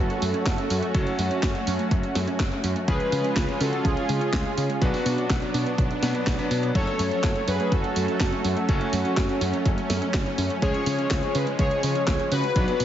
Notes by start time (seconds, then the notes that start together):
Already playing: F#3 A3 C#4 F#4 A4
0.00 F#4
0.10 closed hi-hat
0.22 F#2 A3, open hi-hat
0.34 C#4, closed hi-hat
0.46 F#1 F#4, kick, snare, clap, closed hi-hat
0.58 closed hi-hat
0.70 F#2 C#4, open hi-hat
0.82 A3, closed hi-hat
0.95 F#1 F#3 A3 C#4 F#4 A4, kick, closed hi-hat
1.07 closed hi-hat
1.19 F#2 A3, open hi-hat
1.31 C#4, closed hi-hat
1.43 F#1 F#4, kick, snare, clap, closed hi-hat
1.55 closed hi-hat
1.67 F#2 C#4, open hi-hat
1.79 A3, closed hi-hat
1.91 F#1 F#3, kick, closed hi-hat
2.03 closed hi-hat
2.15 F#2 A3, snare, open hi-hat
2.28 C#4, closed hi-hat
2.40 F#1 F#4, kick, snare, clap, closed hi-hat
2.52 closed hi-hat
2.64 F#2 C#4, open hi-hat
2.76 A3, closed hi-hat
2.88 C#2 F3 G#3 C#4 F4 G#4 B4, kick, closed hi-hat
3.00 closed hi-hat
3.12 C#3 G#3, open hi-hat
3.24 C#4, closed hi-hat
3.36 C#2 F4, kick, snare, clap, closed hi-hat
3.49 closed hi-hat
3.60 C#3 C#4 F#4 A4, open hi-hat
3.73 G#3, closed hi-hat
3.85 C#2 F3 F4 G#4, kick, closed hi-hat
3.97 closed hi-hat
4.09 C#3 G#3, open hi-hat
4.21 C#4, closed hi-hat
4.33 C#2 F4, kick, snare, clap, closed hi-hat
4.45 closed hi-hat
4.57 C#3 C#4, open hi-hat
4.69 G#3, closed hi-hat
4.81 B1 F#3 B3 D4 F#4 B4, kick, closed hi-hat
4.94 open hi-hat
5.06 B2 B3, open hi-hat
5.18 D4, closed hi-hat
5.30 B1 F#4, kick, snare, clap, closed hi-hat
5.42 closed hi-hat
5.54 B2 D4, open hi-hat
5.66 B3, closed hi-hat
5.78 B1 F#3, kick, closed hi-hat
5.91 closed hi-hat
6.03 B2 F#3 B3 D4 B4, snare, open hi-hat
6.14 D4, closed hi-hat
6.27 B1 F#4, kick, snare, clap, closed hi-hat
6.39 F#3 B3 D4 B4, closed hi-hat
6.51 B2 D4, open hi-hat
6.63 B3, closed hi-hat
6.75 F#1 F#3 A3 C#4 A4 C#5, kick, closed hi-hat
6.87 closed hi-hat
6.99 F#2 A3, open hi-hat
7.11 C#4, closed hi-hat
7.23 F#1 F#4, kick, snare, clap, closed hi-hat
7.36 closed hi-hat
7.48 F#2 C#4 G#4 B4, open hi-hat
7.60 A3, closed hi-hat
7.72 F#1 F#3 F#4 A4, kick, closed hi-hat
7.84 closed hi-hat
7.96 F#2 A3, open hi-hat
8.08 C#4, closed hi-hat
8.20 F#1 F#4, kick, snare, clap, closed hi-hat
8.32 C#4, closed hi-hat
8.45 F#2 C#4, open hi-hat
8.57 A3, closed hi-hat
8.69 F#1 F#3 A3 C#4 F#4 A4, kick, closed hi-hat
8.81 closed hi-hat
8.93 F#2 A3, open hi-hat
9.05 C#4, closed hi-hat
9.17 F#1 F#4, kick, snare, clap, closed hi-hat
9.29 closed hi-hat
9.41 F#2 C#4, open hi-hat
9.53 A3, closed hi-hat
9.65 F#1 F#3, kick, closed hi-hat
9.78 closed hi-hat
9.90 F#2 A3, snare, open hi-hat
10.02 C#4, closed hi-hat
10.14 F#1 F#4, kick, snare, clap, closed hi-hat
10.26 C#4, closed hi-hat
10.38 F#2 C#4, open hi-hat
10.50 A3, closed hi-hat
10.62 C#2 F3 G#3 C#4 G#4 C#5, kick, closed hi-hat
10.74 closed hi-hat
10.86 C#3 G#3, open hi-hat
10.99 C#4, closed hi-hat
11.11 C#2 F4, kick, snare, clap, closed hi-hat
11.23 closed hi-hat
11.35 C#3 C#4 G#4 B4, open hi-hat
11.47 G#3, closed hi-hat
11.59 C#2 F3 G#4 C#5, kick, closed hi-hat
11.71 closed hi-hat
11.83 C#3 G#3, open hi-hat
11.95 C#4, closed hi-hat
12.07 C#2 F4, kick, snare, clap, closed hi-hat
12.20 C#4, closed hi-hat
12.32 C#3 C#4 F#4 B4, open hi-hat
12.44 G#3, closed hi-hat
12.56 B1 F#3 B3 D4 B4, kick, closed hi-hat
12.68 closed hi-hat
12.80 B2 B3, open hi-hat